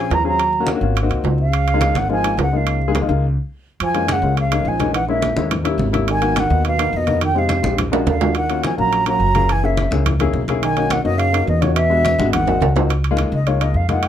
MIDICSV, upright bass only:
0, 0, Header, 1, 2, 480
1, 0, Start_track
1, 0, Key_signature, -5, "major"
1, 0, Tempo, 284091
1, 671, Time_signature, 4, 2, 24, 8
1, 6432, Key_signature, 6, "major"
1, 23795, End_track
2, 0, Start_track
2, 0, Title_t, "Upright bass"
2, 0, Program_c, 0, 32
2, 175, Note_on_c, 0, 39, 92
2, 1292, Note_off_c, 0, 39, 0
2, 1369, Note_on_c, 0, 32, 93
2, 1826, Note_off_c, 0, 32, 0
2, 1857, Note_on_c, 0, 36, 69
2, 2079, Note_off_c, 0, 36, 0
2, 2089, Note_on_c, 0, 37, 93
2, 3209, Note_off_c, 0, 37, 0
2, 3296, Note_on_c, 0, 32, 91
2, 3973, Note_off_c, 0, 32, 0
2, 4009, Note_on_c, 0, 37, 88
2, 5129, Note_off_c, 0, 37, 0
2, 5217, Note_on_c, 0, 37, 98
2, 5671, Note_off_c, 0, 37, 0
2, 6421, Note_on_c, 0, 42, 92
2, 7096, Note_off_c, 0, 42, 0
2, 7127, Note_on_c, 0, 37, 92
2, 7809, Note_off_c, 0, 37, 0
2, 7853, Note_on_c, 0, 34, 91
2, 8971, Note_off_c, 0, 34, 0
2, 9059, Note_on_c, 0, 39, 96
2, 9735, Note_off_c, 0, 39, 0
2, 9762, Note_on_c, 0, 32, 94
2, 10886, Note_off_c, 0, 32, 0
2, 10984, Note_on_c, 0, 39, 98
2, 11658, Note_off_c, 0, 39, 0
2, 11705, Note_on_c, 0, 41, 100
2, 12817, Note_off_c, 0, 41, 0
2, 12897, Note_on_c, 0, 34, 100
2, 13573, Note_off_c, 0, 34, 0
2, 13625, Note_on_c, 0, 39, 99
2, 14736, Note_off_c, 0, 39, 0
2, 14838, Note_on_c, 0, 34, 93
2, 15504, Note_off_c, 0, 34, 0
2, 15538, Note_on_c, 0, 30, 91
2, 16652, Note_off_c, 0, 30, 0
2, 16738, Note_on_c, 0, 37, 94
2, 17413, Note_off_c, 0, 37, 0
2, 17456, Note_on_c, 0, 35, 89
2, 18571, Note_off_c, 0, 35, 0
2, 18668, Note_on_c, 0, 42, 93
2, 19338, Note_off_c, 0, 42, 0
2, 19385, Note_on_c, 0, 40, 94
2, 20496, Note_off_c, 0, 40, 0
2, 20587, Note_on_c, 0, 32, 99
2, 21259, Note_off_c, 0, 32, 0
2, 21297, Note_on_c, 0, 37, 96
2, 22413, Note_off_c, 0, 37, 0
2, 22502, Note_on_c, 0, 37, 98
2, 23177, Note_off_c, 0, 37, 0
2, 23217, Note_on_c, 0, 41, 91
2, 23795, Note_off_c, 0, 41, 0
2, 23795, End_track
0, 0, End_of_file